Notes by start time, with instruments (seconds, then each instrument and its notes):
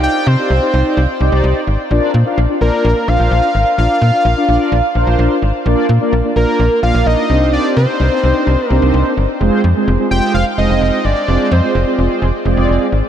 Already playing: analog polysynth D#4 G4 C5 D5
0.03 analog synth lead G5
0.27 fm bass C3, analog synth lead C5
0.38 analog polysynth D#4 G4 C5 D5
0.50 fm bass C2
0.62 analog polysynth D#4 G4 C5 D5
0.74 fm bass C2, analog polysynth D#4 G4 C5 D5
0.97 fm bass C2
1.20 fm bass C2, analog polysynth D#4 G4 C5 D5
1.32 fm bass C2
1.44 fm bass C2
1.67 fm bass G#1
1.91 fm bass A#1, analog polysynth D4 F4 A#4 D5
2.14 fm bass A#2
2.26 analog polysynth D4 F4 A#4 F5
2.38 fm bass A#1
2.49 analog polysynth D4 F4 A#4 D5
2.61 fm bass A#1, analog polysynth D4 F4 A#4 D5, analog synth lead A#4
2.85 fm bass A#1
3.08 fm bass A#1, analog polysynth D4 F4 A#4 C5, analog synth lead F5
3.20 fm bass A#1
3.31 fm bass A#1
3.55 fm bass G#1
3.78 fm bass A#1, analog polysynth D4 F4 A#4 D5, analog synth lead F5
4.01 fm bass A#2
4.13 analog polysynth D4 F4 A#4 D5
4.25 fm bass A#1
4.37 analog polysynth D4 F4 A#4 D5
4.48 fm bass A#1, analog polysynth D4 F4 A#4 D5
4.72 fm bass A#1
4.95 fm bass A#1, analog polysynth D4 F4 A#4 C5
5.07 fm bass A#1
5.19 fm bass A#1
5.42 fm bass G#1
5.66 fm bass A#1, analog polysynth A#3 D4 F4 A#4 D5
5.89 fm bass A#2
6.01 analog polysynth A#3 D4 F4 A#4 D5
6.12 fm bass A#1
6.24 analog polysynth A#3 D4 F4 A#4 D5
6.36 fm bass A#1, analog polysynth A#3 D4 F4 A#4 D5, analog synth lead A#4
6.59 fm bass A#1
6.83 fm bass A#1, analog polysynth A#3 D4 F4 A#4 D5, analog synth lead F5
6.94 fm bass A#1
7.06 fm bass A#1, analog synth lead D#5
7.30 fm bass C2, analog polysynth C4 D4 D#4 G4 C5
7.53 analog synth lead D5
7.77 fm bass C3, analog synth lead C5
7.88 analog polysynth C4 D4 D#4 G4 C5
8.00 fm bass C2
8.12 analog polysynth C4 D4 D#4 G4 C5
8.23 fm bass C2, analog polysynth C4 D4 D#4 G4 C5
8.47 fm bass C2
8.69 fm bass C2, analog polysynth C4 D4 D#4 G4 C5, analog synth lead A#4
8.82 fm bass C2
8.94 fm bass C2
9.17 fm bass G1
9.41 fm bass F1, analog polysynth G#3 C4 F4 G#4 C5
9.64 fm bass F2
9.76 analog polysynth G#3 C4 F4 G#4 C5
9.88 fm bass F1
9.99 analog polysynth G#3 C4 F4 G#4 C5
10.11 fm bass F1, analog polysynth G#3 C4 F4 G#4 C5, analog synth lead G5
10.34 fm bass F1, analog synth lead F5
10.58 fm bass F1, analog polysynth G#3 C4 F4 G#4 C5, analog synth lead D#5
10.69 fm bass F1
10.81 fm bass F1
11.05 fm bass G1, analog synth lead D5
11.28 fm bass F1, analog polysynth G#3 C4 F4 G#4 C5
11.51 fm bass F2, analog synth lead C5
11.63 analog polysynth G#3 C4 F4 G#4 C5
11.75 fm bass F1
11.87 analog polysynth G#3 C4 F4 G#4 C5
11.98 fm bass F1, analog polysynth G#3 C4 F4 G#4 C5
12.22 fm bass F1
12.45 fm bass F1, analog polysynth G#3 C4 F4 G#4 D5
12.57 fm bass F1
12.69 fm bass F1
12.92 fm bass G#1